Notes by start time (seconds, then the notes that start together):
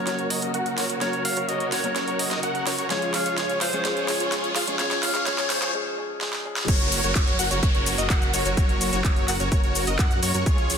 Already playing: C#3 F#3 A#3 C#4 F#4 A#4 C#5, riser
0.07 F#1 F#4 A#4 C#5, snare, closed hi-hat
0.19 F#1 F#4 A#4 C#5, closed hi-hat
0.30 D#5, open hi-hat
0.42 F#1 F#4 A#4 D#5, closed hi-hat
0.54 F#1 F#4 A#4 F#5, closed hi-hat
0.66 closed hi-hat
0.78 F#1 F#4 A#4 C#5, snare, open hi-hat
0.89 F#1 F#4 A#4 C#5, closed hi-hat
1.00 F#1 F#3 A#3 C#4 F#4 A#4 C#5, snare, closed hi-hat
1.13 closed hi-hat
1.25 F5, open hi-hat
1.37 F#1 F#4 A#4 C#5, closed hi-hat
1.48 F#1 F#4 A#4 C#5 D#5, closed hi-hat
1.60 closed hi-hat
1.72 F#4 A#4 C#5 F#5, snare, open hi-hat
1.83 F#1 F#3 A#3 C#4 F#4 A#4 C#5, closed hi-hat
1.96 F#1 F#4 A#4 C#5, snare, closed hi-hat
2.08 F#1 F#4 A#4 C#5, closed hi-hat
2.19 D#5, open hi-hat
2.31 F#1 F#4 A#4 D#5, snare, closed hi-hat
2.43 F#2 F#4 A#4 F#5, closed hi-hat
2.55 closed hi-hat
2.67 F#2 F#4 A#4 C#5, snare, open hi-hat
2.78 F#2 F#4 A#4 C#5, closed hi-hat
2.89 C#2 F3 G#3 C#4 F4 G#4 C#5, snare, closed hi-hat
3.02 closed hi-hat
3.14 F5, snare, open hi-hat
3.26 C#2 F4 G#4 C#5, closed hi-hat
3.38 C#2 F4 G#4 C#5, snare, closed hi-hat
3.49 closed hi-hat
3.61 C#2 F4 G#4 C5 F5, snare, open hi-hat
3.72 C#2 F3 G#3 C#4 F4 G#4 C#5, closed hi-hat
3.84 C#2 F3 G#3 C#4 F4 G#4 C#5, snare, closed hi-hat
3.97 closed hi-hat
4.08 C#5, snare, open hi-hat
4.20 C#2 F4 G#4 C#5, closed hi-hat
4.32 C#2 F4 G#4 C#5, snare, closed hi-hat
4.44 closed hi-hat
4.56 C#2 F4 G#4 F5, snare, open hi-hat
4.66 C#2 F3 G#3 C#4 F4 G#4 C#5, closed hi-hat
4.78 C#2 F3 G#3 C#4 F4 G#4 C#5, snare, closed hi-hat
4.91 snare, closed hi-hat
5.03 F5, snare, open hi-hat
5.15 C#2 F4 G#4 C#5, snare, closed hi-hat
5.25 C#2 F3 G#3 C#4 F4 G#4 C#5, snare, closed hi-hat
5.38 snare, closed hi-hat
5.50 C5, snare, open hi-hat
5.62 C#2 F4 G#4 C#5, snare, closed hi-hat
5.73 F3 G#3 C#4 G#4
5.96 F3 G#3 C#4 G#4
6.20 F3 G#3 C#4 G#4, snare
6.33 snare
6.44 F3 G#3 C#4 G#4
6.57 snare
6.68 F#1 C#3 F#3 A#3 F#4 A#4 C#5, kick, closed hi-hat, crash, downlifter, shaker
6.80 closed hi-hat
6.92 open hi-hat, shaker
7.04 F#1 F#4 A#4 C#5, closed hi-hat, shaker
7.15 F#1 F#4 A#4 C#5, kick, clap, closed hi-hat, shaker
7.27 closed hi-hat
7.39 F#1 F#4 A#4 F#5, open hi-hat, shaker
7.51 F#1 F#4 A#4 C#5, closed hi-hat, shaker
7.63 F#1 F#4 A#4 C#5, kick, closed hi-hat, shaker
7.75 F#1 F#4 A#4 C#5, closed hi-hat
7.86 open hi-hat, shaker
7.98 F#1 F#4 A#4 D#5, closed hi-hat, shaker
8.10 F#1 F#4 A#4 F#5, kick, clap, closed hi-hat, shaker
8.22 closed hi-hat, shaker
8.34 F#1 F#4 A#4 C#5, open hi-hat, shaker
8.45 F#1 F#4 A#4 C#5, closed hi-hat, shaker
8.57 F#1 F#4 A#4 C#5, kick, closed hi-hat, shaker
8.69 closed hi-hat
8.81 open hi-hat, shaker
8.93 F#1 F#4 A#4 C#5, closed hi-hat, shaker
9.04 F#1 F#4 A#4 C#5, kick, clap, closed hi-hat, shaker
9.16 closed hi-hat
9.28 F#1 F#4 A#4 F#5, clap, open hi-hat, shaker
9.40 F#1 F#4 A#4 C#5, closed hi-hat, shaker
9.52 F#1 F#4 A#4 C#5, kick, closed hi-hat, shaker
9.64 F#1 F#4 A#4 C#5, closed hi-hat
9.75 open hi-hat, shaker
9.87 F#1 F#4 A#4 D#5, closed hi-hat, shaker
9.99 F#2 F#4 A#4 F#5, kick, clap, closed hi-hat, shaker
10.11 closed hi-hat, shaker
10.23 F#2 F#4 A#4 C#5, open hi-hat, shaker
10.34 F#2 F#4 A#4 C#5, closed hi-hat, shaker
10.46 C#2 F3 G#3 F4 G#4 C#5, kick, closed hi-hat, shaker
10.58 closed hi-hat
10.70 open hi-hat, shaker